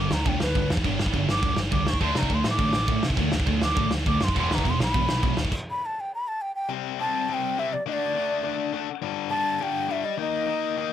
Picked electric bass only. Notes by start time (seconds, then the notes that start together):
0.12 D2
0.26 D2
0.42 D2
0.56 D2
0.71 E2
0.85 G1
1.00 G1
1.14 G1
1.29 G1
1.43 D2
1.57 G1
1.73 C#2
1.87 D2
2.01 D2
2.16 C3
2.31 D2
2.45 A2
2.59 A1
2.74 A1
2.88 A2
3.04 C3
3.17 D2
3.33 D2
3.47 D2
3.61 D2
3.77 A1
3.91 D2
4.07 D2
4.22 F#2
4.36 E1
4.51 D2
4.65 E1
4.79 B1
4.95 B1
5.08 B1
5.23 B1
5.38 D2